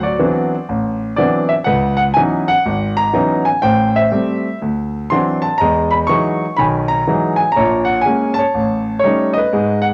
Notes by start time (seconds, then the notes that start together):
Already playing: D2 F#3 C5
0.03 F#4 D5
0.19 E3 F#3 B3 C4 D4
0.69 A1
1.16 E3 F#3 B3 C4 D4 D5
1.49 E5
1.64 C#2 B4 F#5
1.97 F#5
2.14 E3 F#3 B3 C#4 D#4 G#5
2.48 F#5
2.65 G#1
2.97 A#5
3.14 E3 F#3 B3 C#4 D#4
3.45 G#5
3.62 A1 A2 C5 G5
3.96 C5 E5
4.11 G3 A3 C4
4.62 D2
5.10 E3 F#3 C4 D4 C6
5.42 A5
5.58 E2 G#3 D#5 A#5
5.91 B5
6.07 E3 F#3 G#3 D#4 C#6
6.57 B1 D#3 G#5 B5
6.88 A#5
7.08 E3 F#3 G#3 D#4
7.36 G#5
7.52 A#5
7.56 A#1 A#2 C#5
7.85 F#5
8.01 G#5
8.05 G#3 A#3 C#4
8.34 A5
8.39 C#5
8.54 A1
8.99 C#5
9.03 G3 A3 C#4 D#4
9.33 D#5
9.38 B4
9.52 G#2 G#3
9.82 F#5